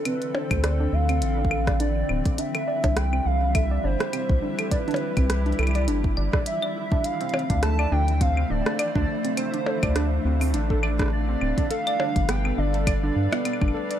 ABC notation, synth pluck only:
X:1
M:4/4
L:1/16
Q:"Swing 16ths" 1/4=103
K:Ddor
V:1 name="Synth pluck"
C z D A d D z C z D A d D z C z | D A d D z C z D A d D z C z D A | d D z C z D A d D z d d z d z D | z C C D A d D z C C D A d D z C |
C D A d D z C C D A d D z C C D | A d D z B, B, D A d D z B, B, D A d |]